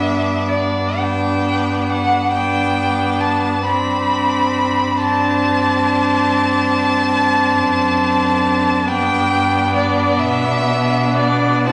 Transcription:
Already playing: cello G2, viola B3, violin D4 E5
0.48 violin D5
0.98 viola B3, violin D4 G5
1.92 violin F#5
2.33 viola B3, violin D4 G5
3.21 violin A5
3.65 cello G2, viola C4, violin D4 B5
4.98 viola C4, violin D4 A5
7.59 cello F#2
8.88 cello G2, viola B3, violin D4 G5
9.75 violin D5
10.19 cello B2, violin E5
11.17 violin D5
11.67 cello C3, viola C4, violin E4 A5

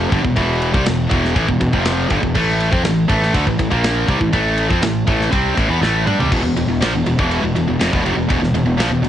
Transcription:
Already playing: distorted electric guitar F2 C3 F3
0.11 fingered electric bass G1, distorted electric guitar G2 D3, kick, ride
0.23 fingered electric bass E1, distorted electric guitar E2 B2, kick
0.36 fingered electric bass E1, distorted electric guitar E2 B2 E3, kick, ride
0.62 ride
0.73 fingered electric bass C2, distorted electric guitar C3 G3, kick
0.85 fingered electric bass E1, distorted electric guitar E2 B2, snare, ride
1.09 fingered electric bass E1, distorted electric guitar E2 B2 E3, kick, ride
1.25 snare
1.35 fingered electric bass A1, distorted electric guitar A2 E3, kick, ride
1.47 fingered electric bass E1, distorted electric guitar E2 B2, kick
1.60 fingered electric bass E1, distorted electric guitar E2 B2, kick, ride
1.73 fingered electric bass F1, distorted electric guitar F2 C3 F3, kick
1.85 snare, ride
2.10 fingered electric bass G1, distorted electric guitar G2 D3, kick, ride
2.22 fingered electric bass E1, distorted electric guitar E2 B2, kick
2.35 fingered electric bass A1, distorted electric guitar A2 E3 A3, kick, crash
2.60 ride
2.71 fingered electric bass F2, distorted electric guitar F3 C4, kick
2.83 fingered electric bass A1, distorted electric guitar A2 E3, snare, ride
3.08 fingered electric bass A1, distorted electric guitar A2 E3 A3, kick, ride
3.23 snare
3.34 fingered electric bass D2, distorted electric guitar D3 A3, kick, ride
3.47 fingered electric bass A1, distorted electric guitar A2 E3, kick
3.59 fingered electric bass A1, distorted electric guitar A2 E3, kick, ride
3.70 fingered electric bass A#1, distorted electric guitar A#2 F3 A#3, kick
3.84 snare, ride
4.08 fingered electric bass C2, distorted electric guitar C3 G3, kick, ride
4.20 fingered electric bass A1, distorted electric guitar A2 E3, kick
4.33 fingered electric bass A1, distorted electric guitar A2 E3 A3, kick, ride
4.58 ride
4.69 fingered electric bass F2, distorted electric guitar F3 C4, kick
4.81 fingered electric bass A1, distorted electric guitar A2 E3, snare, ride
5.07 fingered electric bass A1, distorted electric guitar A2 E3 A3, kick, ride
5.21 snare
5.31 fingered electric bass C2, distorted electric guitar C3 G3 C4, kick, ride
5.57 fingered electric bass A1, distorted electric guitar A2 E3, kick, ride
5.69 fingered electric bass E2, distorted electric guitar E3 B3
5.81 fingered electric bass A1, distorted electric guitar A2 E3 A3, snare
6.06 fingered electric bass G2, distorted electric guitar G3 D4, mid tom
6.19 fingered electric bass C2, distorted electric guitar C3 G3, floor tom
6.31 fingered electric bass E1, distorted electric guitar E2 B2, kick, crash
6.43 fingered electric bass E1, distorted electric guitar E2 B2
6.56 fingered electric bass E1, distorted electric guitar E2 B2, ride
6.68 fingered electric bass E1, distorted electric guitar E2 B2
6.81 fingered electric bass A#1, distorted electric guitar A#2 F3, snare, ride
6.94 fingered electric bass E1, distorted electric guitar E2 B2
7.06 fingered electric bass E1, distorted electric guitar E2 B2, ride
7.19 fingered electric bass E1, distorted electric guitar E2 B2 E3, kick
7.31 ride
7.43 fingered electric bass E1, distorted electric guitar E2 B2
7.55 fingered electric bass E1, distorted electric guitar E2 B2, ride
7.68 fingered electric bass E1, distorted electric guitar E2 B2
7.79 fingered electric bass F1, distorted electric guitar F2 C3, snare, ride
7.92 fingered electric bass E1, distorted electric guitar E2 B2, kick
8.04 fingered electric bass F1, distorted electric guitar F2 C3, ride
8.16 fingered electric bass E1, distorted electric guitar E2 B2
8.28 fingered electric bass E1, distorted electric guitar E2 B2, kick, ride
8.41 fingered electric bass E1, distorted electric guitar E2 B2, snare
8.54 fingered electric bass E1, distorted electric guitar E2 B2, ride
8.66 fingered electric bass E1, distorted electric guitar E2 B2
8.78 fingered electric bass A#1, distorted electric guitar A#2 F3, snare, ride
8.90 fingered electric bass E1, distorted electric guitar E2 B2
9.02 fingered electric bass E1, distorted electric guitar E2 B2, ride

